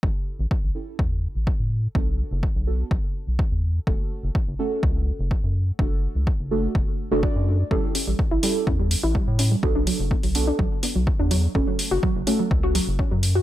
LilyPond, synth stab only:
\new Staff \with { instrumentName = "Synth stab" } { \time 4/4 \key a \mixolydian \tempo 4 = 125 <cis' e' g' a'>4. <cis' e' g' a'>2~ <cis' e' g' a'>8 | <b d' fis' a'>4. <b d' fis' a'>2~ <b d' fis' a'>8 | <a cis' fis' a'>4. <a cis' fis' a'>2~ <a cis' fis' a'>8 | <a d' fis' a'>4. <a d' fis' a'>4~ <a d' fis' a'>16 <a d' fis' a'>16 <a d' fis' d''>4 |
<cis' e' g' a'>4. <cis' e' g' a'>2~ <cis' e' g' a'>8 | <b d' fis' a'>4. <b d' fis' a'>2~ <b d' fis' a'>8 | <a cis' fis' a'>4. <a cis' fis' a'>2~ <a cis' fis' a'>8 | }